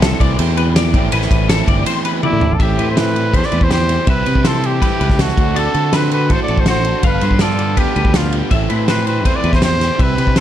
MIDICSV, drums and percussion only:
0, 0, Header, 1, 2, 480
1, 0, Start_track
1, 0, Key_signature, 0, "minor"
1, 0, Tempo, 369458
1, 1462, Time_signature, 4, 2, 24, 8
1, 13516, End_track
2, 0, Start_track
2, 0, Title_t, "Drums"
2, 31, Note_on_c, 9, 38, 118
2, 31, Note_on_c, 9, 51, 91
2, 161, Note_off_c, 9, 38, 0
2, 161, Note_off_c, 9, 51, 0
2, 264, Note_on_c, 9, 36, 76
2, 270, Note_on_c, 9, 51, 66
2, 394, Note_off_c, 9, 36, 0
2, 400, Note_off_c, 9, 51, 0
2, 503, Note_on_c, 9, 51, 94
2, 633, Note_off_c, 9, 51, 0
2, 745, Note_on_c, 9, 51, 60
2, 875, Note_off_c, 9, 51, 0
2, 988, Note_on_c, 9, 38, 105
2, 988, Note_on_c, 9, 51, 97
2, 1118, Note_off_c, 9, 38, 0
2, 1118, Note_off_c, 9, 51, 0
2, 1221, Note_on_c, 9, 36, 103
2, 1224, Note_on_c, 9, 51, 68
2, 1351, Note_off_c, 9, 36, 0
2, 1354, Note_off_c, 9, 51, 0
2, 1455, Note_on_c, 9, 51, 101
2, 1580, Note_on_c, 9, 38, 32
2, 1585, Note_off_c, 9, 51, 0
2, 1700, Note_on_c, 9, 36, 95
2, 1704, Note_on_c, 9, 51, 77
2, 1710, Note_off_c, 9, 38, 0
2, 1830, Note_off_c, 9, 36, 0
2, 1834, Note_off_c, 9, 51, 0
2, 1943, Note_on_c, 9, 38, 107
2, 1943, Note_on_c, 9, 51, 97
2, 2073, Note_off_c, 9, 38, 0
2, 2073, Note_off_c, 9, 51, 0
2, 2179, Note_on_c, 9, 36, 81
2, 2182, Note_on_c, 9, 51, 71
2, 2309, Note_off_c, 9, 36, 0
2, 2312, Note_off_c, 9, 51, 0
2, 2420, Note_on_c, 9, 51, 99
2, 2550, Note_off_c, 9, 51, 0
2, 2660, Note_on_c, 9, 51, 68
2, 2790, Note_off_c, 9, 51, 0
2, 2900, Note_on_c, 9, 48, 62
2, 3030, Note_off_c, 9, 48, 0
2, 3136, Note_on_c, 9, 43, 85
2, 3266, Note_off_c, 9, 43, 0
2, 3376, Note_on_c, 9, 36, 100
2, 3380, Note_on_c, 9, 51, 71
2, 3506, Note_off_c, 9, 36, 0
2, 3510, Note_off_c, 9, 51, 0
2, 3622, Note_on_c, 9, 51, 57
2, 3752, Note_off_c, 9, 51, 0
2, 3859, Note_on_c, 9, 38, 96
2, 3859, Note_on_c, 9, 51, 71
2, 3989, Note_off_c, 9, 38, 0
2, 3989, Note_off_c, 9, 51, 0
2, 4106, Note_on_c, 9, 51, 51
2, 4236, Note_off_c, 9, 51, 0
2, 4334, Note_on_c, 9, 36, 80
2, 4340, Note_on_c, 9, 51, 79
2, 4451, Note_on_c, 9, 38, 28
2, 4464, Note_off_c, 9, 36, 0
2, 4470, Note_off_c, 9, 51, 0
2, 4570, Note_on_c, 9, 51, 53
2, 4581, Note_off_c, 9, 38, 0
2, 4691, Note_on_c, 9, 36, 86
2, 4700, Note_off_c, 9, 51, 0
2, 4815, Note_on_c, 9, 38, 96
2, 4815, Note_on_c, 9, 51, 71
2, 4820, Note_off_c, 9, 36, 0
2, 4945, Note_off_c, 9, 38, 0
2, 4945, Note_off_c, 9, 51, 0
2, 5054, Note_on_c, 9, 51, 62
2, 5184, Note_off_c, 9, 51, 0
2, 5289, Note_on_c, 9, 51, 82
2, 5292, Note_on_c, 9, 36, 115
2, 5418, Note_off_c, 9, 51, 0
2, 5422, Note_off_c, 9, 36, 0
2, 5537, Note_on_c, 9, 51, 64
2, 5657, Note_on_c, 9, 36, 70
2, 5667, Note_off_c, 9, 51, 0
2, 5776, Note_on_c, 9, 38, 101
2, 5776, Note_on_c, 9, 51, 79
2, 5787, Note_off_c, 9, 36, 0
2, 5906, Note_off_c, 9, 38, 0
2, 5906, Note_off_c, 9, 51, 0
2, 6023, Note_on_c, 9, 51, 57
2, 6152, Note_off_c, 9, 51, 0
2, 6260, Note_on_c, 9, 36, 82
2, 6265, Note_on_c, 9, 51, 87
2, 6390, Note_off_c, 9, 36, 0
2, 6395, Note_off_c, 9, 51, 0
2, 6506, Note_on_c, 9, 51, 57
2, 6621, Note_on_c, 9, 36, 89
2, 6623, Note_on_c, 9, 38, 34
2, 6636, Note_off_c, 9, 51, 0
2, 6744, Note_off_c, 9, 38, 0
2, 6744, Note_on_c, 9, 38, 99
2, 6744, Note_on_c, 9, 51, 82
2, 6751, Note_off_c, 9, 36, 0
2, 6860, Note_off_c, 9, 38, 0
2, 6860, Note_on_c, 9, 38, 33
2, 6874, Note_off_c, 9, 51, 0
2, 6983, Note_on_c, 9, 36, 99
2, 6987, Note_on_c, 9, 51, 57
2, 6990, Note_off_c, 9, 38, 0
2, 7113, Note_off_c, 9, 36, 0
2, 7117, Note_off_c, 9, 51, 0
2, 7227, Note_on_c, 9, 51, 80
2, 7357, Note_off_c, 9, 51, 0
2, 7463, Note_on_c, 9, 51, 56
2, 7593, Note_off_c, 9, 51, 0
2, 7701, Note_on_c, 9, 38, 105
2, 7701, Note_on_c, 9, 51, 76
2, 7831, Note_off_c, 9, 38, 0
2, 7831, Note_off_c, 9, 51, 0
2, 7944, Note_on_c, 9, 51, 55
2, 8074, Note_off_c, 9, 51, 0
2, 8182, Note_on_c, 9, 51, 72
2, 8185, Note_on_c, 9, 36, 86
2, 8312, Note_off_c, 9, 51, 0
2, 8315, Note_off_c, 9, 36, 0
2, 8421, Note_on_c, 9, 51, 47
2, 8542, Note_on_c, 9, 36, 81
2, 8551, Note_off_c, 9, 51, 0
2, 8652, Note_on_c, 9, 38, 111
2, 8652, Note_on_c, 9, 51, 73
2, 8672, Note_off_c, 9, 36, 0
2, 8781, Note_off_c, 9, 38, 0
2, 8781, Note_off_c, 9, 51, 0
2, 8895, Note_on_c, 9, 51, 58
2, 9025, Note_off_c, 9, 51, 0
2, 9134, Note_on_c, 9, 51, 81
2, 9138, Note_on_c, 9, 36, 109
2, 9264, Note_off_c, 9, 51, 0
2, 9268, Note_off_c, 9, 36, 0
2, 9370, Note_on_c, 9, 51, 63
2, 9494, Note_on_c, 9, 36, 64
2, 9500, Note_off_c, 9, 51, 0
2, 9602, Note_on_c, 9, 38, 95
2, 9602, Note_on_c, 9, 51, 80
2, 9624, Note_off_c, 9, 36, 0
2, 9732, Note_off_c, 9, 38, 0
2, 9732, Note_off_c, 9, 51, 0
2, 9857, Note_on_c, 9, 51, 57
2, 9986, Note_off_c, 9, 51, 0
2, 10096, Note_on_c, 9, 36, 80
2, 10096, Note_on_c, 9, 51, 83
2, 10226, Note_off_c, 9, 36, 0
2, 10226, Note_off_c, 9, 51, 0
2, 10340, Note_on_c, 9, 51, 51
2, 10456, Note_on_c, 9, 36, 83
2, 10470, Note_off_c, 9, 51, 0
2, 10574, Note_on_c, 9, 38, 108
2, 10574, Note_on_c, 9, 51, 79
2, 10586, Note_off_c, 9, 36, 0
2, 10704, Note_off_c, 9, 38, 0
2, 10704, Note_off_c, 9, 51, 0
2, 10815, Note_on_c, 9, 51, 59
2, 10945, Note_off_c, 9, 51, 0
2, 11055, Note_on_c, 9, 51, 79
2, 11057, Note_on_c, 9, 36, 96
2, 11185, Note_off_c, 9, 51, 0
2, 11187, Note_off_c, 9, 36, 0
2, 11300, Note_on_c, 9, 51, 60
2, 11430, Note_off_c, 9, 51, 0
2, 11537, Note_on_c, 9, 38, 95
2, 11537, Note_on_c, 9, 51, 76
2, 11667, Note_off_c, 9, 38, 0
2, 11667, Note_off_c, 9, 51, 0
2, 11782, Note_on_c, 9, 51, 53
2, 11912, Note_off_c, 9, 51, 0
2, 12021, Note_on_c, 9, 36, 75
2, 12022, Note_on_c, 9, 51, 78
2, 12151, Note_off_c, 9, 36, 0
2, 12152, Note_off_c, 9, 51, 0
2, 12258, Note_on_c, 9, 51, 44
2, 12380, Note_on_c, 9, 36, 82
2, 12381, Note_on_c, 9, 38, 33
2, 12388, Note_off_c, 9, 51, 0
2, 12496, Note_off_c, 9, 38, 0
2, 12496, Note_on_c, 9, 38, 98
2, 12496, Note_on_c, 9, 51, 73
2, 12510, Note_off_c, 9, 36, 0
2, 12626, Note_off_c, 9, 38, 0
2, 12626, Note_off_c, 9, 51, 0
2, 12747, Note_on_c, 9, 38, 33
2, 12747, Note_on_c, 9, 51, 48
2, 12877, Note_off_c, 9, 38, 0
2, 12877, Note_off_c, 9, 51, 0
2, 12984, Note_on_c, 9, 36, 115
2, 12987, Note_on_c, 9, 51, 69
2, 13114, Note_off_c, 9, 36, 0
2, 13117, Note_off_c, 9, 51, 0
2, 13228, Note_on_c, 9, 51, 56
2, 13343, Note_on_c, 9, 36, 67
2, 13358, Note_off_c, 9, 51, 0
2, 13459, Note_on_c, 9, 38, 96
2, 13459, Note_on_c, 9, 51, 77
2, 13472, Note_off_c, 9, 36, 0
2, 13516, Note_off_c, 9, 38, 0
2, 13516, Note_off_c, 9, 51, 0
2, 13516, End_track
0, 0, End_of_file